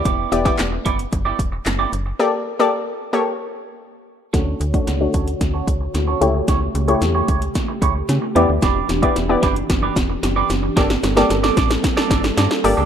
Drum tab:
HH |x-xxx-xxx-x-x-x-|----------------|x-xxx-xxx-x-x-x-|x-xxx-xxx-x-x-x-|
CP |----x-------x---|----------------|----------------|----------------|
SD |----o-------o---|----------------|o---o---o---o---|o---o---o---o---|
BD |o--o--o-o-o-----|----------------|o--o--o-o-o-----|o-----o-o-o-----|

HH |x-xxx-xxx-x-x-x-|x-xxx-xxx-x-x-o-|
CP |----------------|----------------|
SD |o-o-o-o-o-o-o-o-|oooooooooooooo--|
BD |o--o--o-o-o-----|o-----o-o-o-----|